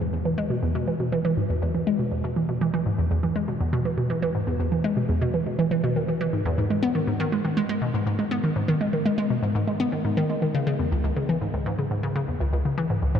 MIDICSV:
0, 0, Header, 1, 2, 480
1, 0, Start_track
1, 0, Tempo, 495868
1, 609, Time_signature, 4, 2, 24, 8
1, 12776, End_track
2, 0, Start_track
2, 0, Title_t, "Synth arpeggio sound"
2, 0, Program_c, 0, 84
2, 6, Note_on_c, 0, 40, 72
2, 114, Note_off_c, 0, 40, 0
2, 126, Note_on_c, 0, 40, 77
2, 206, Note_off_c, 0, 40, 0
2, 246, Note_on_c, 0, 52, 72
2, 326, Note_off_c, 0, 52, 0
2, 366, Note_on_c, 0, 56, 100
2, 414, Note_off_c, 0, 56, 0
2, 486, Note_on_c, 0, 47, 77
2, 535, Note_off_c, 0, 47, 0
2, 606, Note_on_c, 0, 40, 81
2, 721, Note_off_c, 0, 40, 0
2, 726, Note_on_c, 0, 47, 99
2, 806, Note_off_c, 0, 47, 0
2, 847, Note_on_c, 0, 52, 77
2, 895, Note_off_c, 0, 52, 0
2, 968, Note_on_c, 0, 47, 70
2, 1047, Note_off_c, 0, 47, 0
2, 1088, Note_on_c, 0, 52, 98
2, 1136, Note_off_c, 0, 52, 0
2, 1208, Note_on_c, 0, 52, 102
2, 1255, Note_off_c, 0, 52, 0
2, 1329, Note_on_c, 0, 44, 67
2, 1376, Note_off_c, 0, 44, 0
2, 1449, Note_on_c, 0, 40, 69
2, 1557, Note_off_c, 0, 40, 0
2, 1569, Note_on_c, 0, 40, 84
2, 1648, Note_off_c, 0, 40, 0
2, 1689, Note_on_c, 0, 52, 71
2, 1768, Note_off_c, 0, 52, 0
2, 1809, Note_on_c, 0, 56, 101
2, 1856, Note_off_c, 0, 56, 0
2, 1928, Note_on_c, 0, 47, 72
2, 1975, Note_off_c, 0, 47, 0
2, 2048, Note_on_c, 0, 40, 81
2, 2162, Note_off_c, 0, 40, 0
2, 2168, Note_on_c, 0, 47, 93
2, 2247, Note_off_c, 0, 47, 0
2, 2288, Note_on_c, 0, 52, 74
2, 2335, Note_off_c, 0, 52, 0
2, 2409, Note_on_c, 0, 47, 80
2, 2487, Note_off_c, 0, 47, 0
2, 2529, Note_on_c, 0, 52, 101
2, 2576, Note_off_c, 0, 52, 0
2, 2649, Note_on_c, 0, 52, 101
2, 2696, Note_off_c, 0, 52, 0
2, 2769, Note_on_c, 0, 44, 77
2, 2816, Note_off_c, 0, 44, 0
2, 2888, Note_on_c, 0, 40, 72
2, 2997, Note_off_c, 0, 40, 0
2, 3009, Note_on_c, 0, 40, 83
2, 3087, Note_off_c, 0, 40, 0
2, 3128, Note_on_c, 0, 52, 77
2, 3207, Note_off_c, 0, 52, 0
2, 3249, Note_on_c, 0, 56, 89
2, 3296, Note_off_c, 0, 56, 0
2, 3369, Note_on_c, 0, 47, 71
2, 3416, Note_off_c, 0, 47, 0
2, 3490, Note_on_c, 0, 40, 84
2, 3603, Note_off_c, 0, 40, 0
2, 3609, Note_on_c, 0, 47, 99
2, 3688, Note_off_c, 0, 47, 0
2, 3729, Note_on_c, 0, 52, 77
2, 3776, Note_off_c, 0, 52, 0
2, 3849, Note_on_c, 0, 47, 74
2, 3928, Note_off_c, 0, 47, 0
2, 3968, Note_on_c, 0, 52, 92
2, 4015, Note_off_c, 0, 52, 0
2, 4089, Note_on_c, 0, 52, 97
2, 4136, Note_off_c, 0, 52, 0
2, 4208, Note_on_c, 0, 44, 72
2, 4255, Note_off_c, 0, 44, 0
2, 4329, Note_on_c, 0, 40, 77
2, 4436, Note_off_c, 0, 40, 0
2, 4448, Note_on_c, 0, 40, 82
2, 4527, Note_off_c, 0, 40, 0
2, 4568, Note_on_c, 0, 52, 76
2, 4647, Note_off_c, 0, 52, 0
2, 4687, Note_on_c, 0, 56, 98
2, 4735, Note_off_c, 0, 56, 0
2, 4809, Note_on_c, 0, 47, 71
2, 4856, Note_off_c, 0, 47, 0
2, 4927, Note_on_c, 0, 40, 86
2, 5042, Note_off_c, 0, 40, 0
2, 5048, Note_on_c, 0, 47, 101
2, 5127, Note_off_c, 0, 47, 0
2, 5168, Note_on_c, 0, 52, 69
2, 5216, Note_off_c, 0, 52, 0
2, 5290, Note_on_c, 0, 47, 71
2, 5368, Note_off_c, 0, 47, 0
2, 5409, Note_on_c, 0, 52, 99
2, 5456, Note_off_c, 0, 52, 0
2, 5528, Note_on_c, 0, 52, 101
2, 5576, Note_off_c, 0, 52, 0
2, 5649, Note_on_c, 0, 47, 99
2, 5763, Note_off_c, 0, 47, 0
2, 5770, Note_on_c, 0, 51, 74
2, 5848, Note_off_c, 0, 51, 0
2, 5889, Note_on_c, 0, 52, 78
2, 5997, Note_off_c, 0, 52, 0
2, 6008, Note_on_c, 0, 52, 99
2, 6087, Note_off_c, 0, 52, 0
2, 6128, Note_on_c, 0, 44, 74
2, 6242, Note_off_c, 0, 44, 0
2, 6248, Note_on_c, 0, 40, 102
2, 6362, Note_off_c, 0, 40, 0
2, 6369, Note_on_c, 0, 44, 81
2, 6447, Note_off_c, 0, 44, 0
2, 6488, Note_on_c, 0, 56, 77
2, 6567, Note_off_c, 0, 56, 0
2, 6608, Note_on_c, 0, 59, 103
2, 6655, Note_off_c, 0, 59, 0
2, 6728, Note_on_c, 0, 51, 75
2, 6775, Note_off_c, 0, 51, 0
2, 6847, Note_on_c, 0, 44, 81
2, 6962, Note_off_c, 0, 44, 0
2, 6968, Note_on_c, 0, 51, 104
2, 7047, Note_off_c, 0, 51, 0
2, 7089, Note_on_c, 0, 56, 72
2, 7136, Note_off_c, 0, 56, 0
2, 7208, Note_on_c, 0, 51, 71
2, 7287, Note_off_c, 0, 51, 0
2, 7327, Note_on_c, 0, 56, 101
2, 7375, Note_off_c, 0, 56, 0
2, 7447, Note_on_c, 0, 56, 97
2, 7495, Note_off_c, 0, 56, 0
2, 7566, Note_on_c, 0, 47, 79
2, 7615, Note_off_c, 0, 47, 0
2, 7686, Note_on_c, 0, 44, 78
2, 7795, Note_off_c, 0, 44, 0
2, 7806, Note_on_c, 0, 44, 75
2, 7886, Note_off_c, 0, 44, 0
2, 7926, Note_on_c, 0, 56, 73
2, 8006, Note_off_c, 0, 56, 0
2, 8045, Note_on_c, 0, 59, 96
2, 8094, Note_off_c, 0, 59, 0
2, 8166, Note_on_c, 0, 51, 78
2, 8215, Note_off_c, 0, 51, 0
2, 8286, Note_on_c, 0, 44, 78
2, 8401, Note_off_c, 0, 44, 0
2, 8405, Note_on_c, 0, 51, 104
2, 8486, Note_off_c, 0, 51, 0
2, 8526, Note_on_c, 0, 56, 77
2, 8575, Note_off_c, 0, 56, 0
2, 8645, Note_on_c, 0, 51, 74
2, 8726, Note_off_c, 0, 51, 0
2, 8766, Note_on_c, 0, 56, 99
2, 8814, Note_off_c, 0, 56, 0
2, 8886, Note_on_c, 0, 56, 104
2, 8934, Note_off_c, 0, 56, 0
2, 9005, Note_on_c, 0, 47, 75
2, 9054, Note_off_c, 0, 47, 0
2, 9124, Note_on_c, 0, 44, 74
2, 9233, Note_off_c, 0, 44, 0
2, 9245, Note_on_c, 0, 44, 84
2, 9326, Note_off_c, 0, 44, 0
2, 9365, Note_on_c, 0, 56, 73
2, 9446, Note_off_c, 0, 56, 0
2, 9485, Note_on_c, 0, 59, 104
2, 9534, Note_off_c, 0, 59, 0
2, 9605, Note_on_c, 0, 51, 76
2, 9654, Note_off_c, 0, 51, 0
2, 9725, Note_on_c, 0, 44, 78
2, 9841, Note_off_c, 0, 44, 0
2, 9846, Note_on_c, 0, 51, 98
2, 9926, Note_off_c, 0, 51, 0
2, 9966, Note_on_c, 0, 56, 74
2, 10015, Note_off_c, 0, 56, 0
2, 10087, Note_on_c, 0, 51, 75
2, 10166, Note_off_c, 0, 51, 0
2, 10208, Note_on_c, 0, 49, 101
2, 10255, Note_off_c, 0, 49, 0
2, 10327, Note_on_c, 0, 49, 106
2, 10375, Note_off_c, 0, 49, 0
2, 10447, Note_on_c, 0, 40, 78
2, 10495, Note_off_c, 0, 40, 0
2, 10567, Note_on_c, 0, 37, 78
2, 10676, Note_off_c, 0, 37, 0
2, 10687, Note_on_c, 0, 37, 87
2, 10767, Note_off_c, 0, 37, 0
2, 10808, Note_on_c, 0, 49, 76
2, 10887, Note_off_c, 0, 49, 0
2, 10929, Note_on_c, 0, 52, 94
2, 10976, Note_off_c, 0, 52, 0
2, 11049, Note_on_c, 0, 44, 69
2, 11096, Note_off_c, 0, 44, 0
2, 11168, Note_on_c, 0, 37, 85
2, 11282, Note_off_c, 0, 37, 0
2, 11288, Note_on_c, 0, 44, 97
2, 11367, Note_off_c, 0, 44, 0
2, 11409, Note_on_c, 0, 49, 79
2, 11456, Note_off_c, 0, 49, 0
2, 11528, Note_on_c, 0, 44, 75
2, 11607, Note_off_c, 0, 44, 0
2, 11647, Note_on_c, 0, 49, 98
2, 11695, Note_off_c, 0, 49, 0
2, 11767, Note_on_c, 0, 49, 101
2, 11815, Note_off_c, 0, 49, 0
2, 11887, Note_on_c, 0, 40, 75
2, 11935, Note_off_c, 0, 40, 0
2, 12007, Note_on_c, 0, 37, 80
2, 12115, Note_off_c, 0, 37, 0
2, 12127, Note_on_c, 0, 37, 81
2, 12207, Note_off_c, 0, 37, 0
2, 12248, Note_on_c, 0, 49, 81
2, 12327, Note_off_c, 0, 49, 0
2, 12368, Note_on_c, 0, 52, 106
2, 12415, Note_off_c, 0, 52, 0
2, 12488, Note_on_c, 0, 44, 76
2, 12536, Note_off_c, 0, 44, 0
2, 12608, Note_on_c, 0, 37, 87
2, 12722, Note_off_c, 0, 37, 0
2, 12728, Note_on_c, 0, 44, 108
2, 12776, Note_off_c, 0, 44, 0
2, 12776, End_track
0, 0, End_of_file